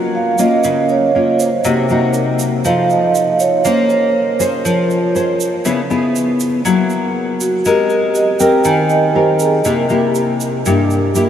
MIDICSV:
0, 0, Header, 1, 4, 480
1, 0, Start_track
1, 0, Tempo, 500417
1, 1574, Time_signature, 4, 2, 24, 8
1, 10834, End_track
2, 0, Start_track
2, 0, Title_t, "Vibraphone"
2, 0, Program_c, 0, 11
2, 0, Control_c, 0, 64, 127
2, 144, Note_on_c, 0, 77, 55
2, 372, Note_off_c, 0, 77, 0
2, 378, Note_on_c, 0, 75, 62
2, 823, Note_off_c, 0, 75, 0
2, 861, Note_on_c, 0, 73, 66
2, 1304, Note_off_c, 0, 73, 0
2, 1336, Note_on_c, 0, 72, 62
2, 1588, Control_c, 0, 64, 0
2, 1783, Control_c, 0, 64, 127
2, 2017, Note_off_c, 0, 72, 0
2, 2060, Note_on_c, 0, 70, 49
2, 2290, Note_off_c, 0, 70, 0
2, 2545, Control_c, 0, 64, 0
2, 2545, Note_on_c, 0, 77, 65
2, 2723, Control_c, 0, 64, 127
2, 2773, Note_off_c, 0, 77, 0
2, 2777, Note_on_c, 0, 75, 64
2, 3222, Note_off_c, 0, 75, 0
2, 3258, Note_on_c, 0, 73, 59
2, 3505, Control_c, 0, 64, 0
2, 3657, Control_c, 0, 64, 127
2, 3702, Note_off_c, 0, 73, 0
2, 3737, Note_on_c, 0, 72, 63
2, 4417, Note_off_c, 0, 72, 0
2, 4464, Note_on_c, 0, 70, 58
2, 4605, Note_off_c, 0, 70, 0
2, 5425, Control_c, 0, 64, 0
2, 6585, Control_c, 0, 64, 127
2, 7110, Note_on_c, 0, 66, 57
2, 7336, Note_off_c, 0, 66, 0
2, 7348, Control_c, 0, 64, 0
2, 7357, Note_on_c, 0, 67, 56
2, 7531, Control_c, 0, 64, 127
2, 7577, Note_on_c, 0, 70, 62
2, 7580, Note_off_c, 0, 67, 0
2, 7809, Note_off_c, 0, 70, 0
2, 7836, Note_on_c, 0, 75, 60
2, 8055, Note_on_c, 0, 79, 65
2, 8059, Note_off_c, 0, 75, 0
2, 8289, Note_off_c, 0, 79, 0
2, 8303, Note_on_c, 0, 80, 68
2, 8532, Note_off_c, 0, 80, 0
2, 8539, Note_on_c, 0, 75, 70
2, 8771, Note_off_c, 0, 75, 0
2, 8782, Note_on_c, 0, 72, 53
2, 9012, Note_off_c, 0, 72, 0
2, 9022, Note_on_c, 0, 68, 58
2, 9252, Note_off_c, 0, 68, 0
2, 9264, Note_on_c, 0, 70, 51
2, 9271, Control_c, 0, 64, 0
2, 9421, Control_c, 0, 64, 127
2, 9707, Note_off_c, 0, 70, 0
2, 10834, End_track
3, 0, Start_track
3, 0, Title_t, "Nylon-string guitar"
3, 0, Program_c, 1, 24
3, 0, Note_on_c, 1, 54, 63
3, 0, Note_on_c, 1, 58, 50
3, 0, Note_on_c, 1, 61, 57
3, 0, Note_on_c, 1, 65, 56
3, 340, Note_off_c, 1, 58, 0
3, 342, Note_off_c, 1, 61, 0
3, 343, Note_off_c, 1, 65, 0
3, 373, Note_on_c, 1, 58, 64
3, 378, Note_on_c, 1, 61, 64
3, 382, Note_on_c, 1, 65, 65
3, 593, Note_off_c, 1, 54, 0
3, 617, Note_on_c, 1, 49, 63
3, 1055, Note_off_c, 1, 58, 0
3, 1057, Note_off_c, 1, 61, 0
3, 1059, Note_off_c, 1, 65, 0
3, 1103, Note_on_c, 1, 58, 53
3, 1109, Note_on_c, 1, 61, 56
3, 1112, Note_on_c, 1, 65, 57
3, 1421, Note_off_c, 1, 58, 0
3, 1423, Note_off_c, 1, 61, 0
3, 1426, Note_off_c, 1, 65, 0
3, 1551, Note_off_c, 1, 49, 0
3, 1578, Note_on_c, 1, 48, 65
3, 1583, Note_on_c, 1, 58, 54
3, 1586, Note_on_c, 1, 63, 54
3, 1588, Note_on_c, 1, 66, 64
3, 1780, Note_off_c, 1, 58, 0
3, 1780, Note_off_c, 1, 63, 0
3, 1782, Note_off_c, 1, 66, 0
3, 1823, Note_on_c, 1, 58, 61
3, 1829, Note_on_c, 1, 63, 61
3, 1835, Note_on_c, 1, 66, 71
3, 2500, Note_off_c, 1, 58, 0
3, 2504, Note_off_c, 1, 63, 0
3, 2505, Note_off_c, 1, 66, 0
3, 2513, Note_off_c, 1, 48, 0
3, 2539, Note_on_c, 1, 53, 65
3, 2539, Note_on_c, 1, 63, 59
3, 2544, Note_on_c, 1, 69, 53
3, 2549, Note_on_c, 1, 72, 56
3, 3458, Note_off_c, 1, 63, 0
3, 3461, Note_off_c, 1, 69, 0
3, 3462, Note_off_c, 1, 72, 0
3, 3473, Note_off_c, 1, 53, 0
3, 3498, Note_on_c, 1, 58, 70
3, 3503, Note_on_c, 1, 68, 58
3, 3504, Note_on_c, 1, 61, 53
3, 3510, Note_on_c, 1, 72, 59
3, 3975, Note_off_c, 1, 61, 0
3, 3976, Note_off_c, 1, 68, 0
3, 3978, Note_off_c, 1, 72, 0
3, 4213, Note_on_c, 1, 61, 65
3, 4220, Note_on_c, 1, 68, 62
3, 4225, Note_on_c, 1, 72, 73
3, 4433, Note_off_c, 1, 58, 0
3, 4461, Note_on_c, 1, 53, 67
3, 4896, Note_off_c, 1, 61, 0
3, 4899, Note_off_c, 1, 68, 0
3, 4901, Note_off_c, 1, 72, 0
3, 4938, Note_on_c, 1, 61, 52
3, 4944, Note_on_c, 1, 68, 53
3, 4949, Note_on_c, 1, 72, 63
3, 5260, Note_off_c, 1, 61, 0
3, 5261, Note_off_c, 1, 68, 0
3, 5264, Note_off_c, 1, 72, 0
3, 5394, Note_off_c, 1, 53, 0
3, 5418, Note_on_c, 1, 49, 62
3, 5423, Note_on_c, 1, 59, 57
3, 5425, Note_on_c, 1, 64, 53
3, 5429, Note_on_c, 1, 68, 62
3, 5559, Note_off_c, 1, 59, 0
3, 5561, Note_off_c, 1, 64, 0
3, 5563, Note_off_c, 1, 68, 0
3, 5660, Note_on_c, 1, 59, 62
3, 5665, Note_on_c, 1, 64, 63
3, 5666, Note_on_c, 1, 68, 66
3, 6339, Note_off_c, 1, 59, 0
3, 6341, Note_off_c, 1, 64, 0
3, 6343, Note_off_c, 1, 68, 0
3, 6354, Note_off_c, 1, 49, 0
3, 6377, Note_on_c, 1, 54, 67
3, 6381, Note_on_c, 1, 58, 49
3, 6383, Note_on_c, 1, 64, 50
3, 6387, Note_on_c, 1, 68, 60
3, 7299, Note_off_c, 1, 58, 0
3, 7301, Note_off_c, 1, 64, 0
3, 7303, Note_off_c, 1, 68, 0
3, 7313, Note_off_c, 1, 54, 0
3, 7344, Note_on_c, 1, 56, 64
3, 7345, Note_on_c, 1, 60, 53
3, 7348, Note_on_c, 1, 67, 51
3, 7352, Note_on_c, 1, 70, 59
3, 8022, Note_off_c, 1, 60, 0
3, 8023, Note_off_c, 1, 67, 0
3, 8026, Note_off_c, 1, 70, 0
3, 8057, Note_on_c, 1, 60, 64
3, 8061, Note_on_c, 1, 67, 62
3, 8062, Note_on_c, 1, 70, 67
3, 8277, Note_off_c, 1, 56, 0
3, 8295, Note_on_c, 1, 51, 68
3, 8739, Note_off_c, 1, 60, 0
3, 8740, Note_off_c, 1, 67, 0
3, 8741, Note_off_c, 1, 70, 0
3, 8775, Note_on_c, 1, 60, 50
3, 8779, Note_on_c, 1, 67, 56
3, 8785, Note_on_c, 1, 70, 53
3, 9232, Note_off_c, 1, 51, 0
3, 9237, Note_off_c, 1, 60, 0
3, 9239, Note_off_c, 1, 67, 0
3, 9242, Note_off_c, 1, 70, 0
3, 9257, Note_on_c, 1, 48, 67
3, 9258, Note_on_c, 1, 58, 51
3, 9264, Note_on_c, 1, 64, 54
3, 9266, Note_on_c, 1, 67, 59
3, 9459, Note_off_c, 1, 58, 0
3, 9461, Note_off_c, 1, 64, 0
3, 9463, Note_off_c, 1, 67, 0
3, 9494, Note_on_c, 1, 58, 64
3, 9500, Note_on_c, 1, 67, 66
3, 9501, Note_on_c, 1, 64, 63
3, 10178, Note_off_c, 1, 58, 0
3, 10179, Note_off_c, 1, 64, 0
3, 10180, Note_off_c, 1, 67, 0
3, 10194, Note_off_c, 1, 48, 0
3, 10224, Note_on_c, 1, 43, 70
3, 10227, Note_on_c, 1, 58, 53
3, 10229, Note_on_c, 1, 64, 55
3, 10235, Note_on_c, 1, 67, 61
3, 10663, Note_off_c, 1, 58, 0
3, 10666, Note_off_c, 1, 64, 0
3, 10667, Note_off_c, 1, 67, 0
3, 10694, Note_on_c, 1, 58, 53
3, 10700, Note_on_c, 1, 64, 50
3, 10705, Note_on_c, 1, 67, 57
3, 10834, Note_off_c, 1, 43, 0
3, 10834, Note_off_c, 1, 58, 0
3, 10834, Note_off_c, 1, 64, 0
3, 10834, Note_off_c, 1, 67, 0
3, 10834, End_track
4, 0, Start_track
4, 0, Title_t, "Drums"
4, 367, Note_on_c, 9, 82, 63
4, 463, Note_off_c, 9, 82, 0
4, 610, Note_on_c, 9, 82, 61
4, 706, Note_off_c, 9, 82, 0
4, 850, Note_on_c, 9, 82, 26
4, 946, Note_off_c, 9, 82, 0
4, 1337, Note_on_c, 9, 82, 61
4, 1433, Note_off_c, 9, 82, 0
4, 1576, Note_on_c, 9, 82, 57
4, 1672, Note_off_c, 9, 82, 0
4, 1813, Note_on_c, 9, 82, 24
4, 1909, Note_off_c, 9, 82, 0
4, 2048, Note_on_c, 9, 82, 48
4, 2144, Note_off_c, 9, 82, 0
4, 2293, Note_on_c, 9, 82, 60
4, 2389, Note_off_c, 9, 82, 0
4, 2538, Note_on_c, 9, 82, 61
4, 2634, Note_off_c, 9, 82, 0
4, 2780, Note_on_c, 9, 82, 25
4, 2876, Note_off_c, 9, 82, 0
4, 3020, Note_on_c, 9, 82, 54
4, 3116, Note_off_c, 9, 82, 0
4, 3258, Note_on_c, 9, 82, 64
4, 3354, Note_off_c, 9, 82, 0
4, 3498, Note_on_c, 9, 82, 59
4, 3594, Note_off_c, 9, 82, 0
4, 3738, Note_on_c, 9, 82, 25
4, 3834, Note_off_c, 9, 82, 0
4, 4220, Note_on_c, 9, 82, 64
4, 4316, Note_off_c, 9, 82, 0
4, 4464, Note_on_c, 9, 82, 61
4, 4560, Note_off_c, 9, 82, 0
4, 4703, Note_on_c, 9, 82, 26
4, 4799, Note_off_c, 9, 82, 0
4, 4946, Note_on_c, 9, 82, 53
4, 5041, Note_off_c, 9, 82, 0
4, 5183, Note_on_c, 9, 82, 65
4, 5278, Note_off_c, 9, 82, 0
4, 5421, Note_on_c, 9, 82, 57
4, 5517, Note_off_c, 9, 82, 0
4, 5663, Note_on_c, 9, 82, 22
4, 5759, Note_off_c, 9, 82, 0
4, 5903, Note_on_c, 9, 82, 51
4, 5999, Note_off_c, 9, 82, 0
4, 6138, Note_on_c, 9, 82, 59
4, 6234, Note_off_c, 9, 82, 0
4, 6381, Note_on_c, 9, 82, 59
4, 6477, Note_off_c, 9, 82, 0
4, 6617, Note_on_c, 9, 82, 23
4, 6713, Note_off_c, 9, 82, 0
4, 7101, Note_on_c, 9, 82, 64
4, 7197, Note_off_c, 9, 82, 0
4, 7337, Note_on_c, 9, 82, 60
4, 7433, Note_off_c, 9, 82, 0
4, 7574, Note_on_c, 9, 82, 23
4, 7670, Note_off_c, 9, 82, 0
4, 7816, Note_on_c, 9, 82, 48
4, 7912, Note_off_c, 9, 82, 0
4, 8053, Note_on_c, 9, 82, 64
4, 8149, Note_off_c, 9, 82, 0
4, 8291, Note_on_c, 9, 82, 62
4, 8387, Note_off_c, 9, 82, 0
4, 8532, Note_on_c, 9, 82, 26
4, 8628, Note_off_c, 9, 82, 0
4, 9010, Note_on_c, 9, 82, 64
4, 9106, Note_off_c, 9, 82, 0
4, 9251, Note_on_c, 9, 82, 61
4, 9347, Note_off_c, 9, 82, 0
4, 9490, Note_on_c, 9, 82, 24
4, 9586, Note_off_c, 9, 82, 0
4, 9735, Note_on_c, 9, 82, 51
4, 9831, Note_off_c, 9, 82, 0
4, 9979, Note_on_c, 9, 82, 60
4, 10075, Note_off_c, 9, 82, 0
4, 10220, Note_on_c, 9, 82, 59
4, 10316, Note_off_c, 9, 82, 0
4, 10460, Note_on_c, 9, 82, 27
4, 10556, Note_off_c, 9, 82, 0
4, 10696, Note_on_c, 9, 82, 56
4, 10792, Note_off_c, 9, 82, 0
4, 10834, End_track
0, 0, End_of_file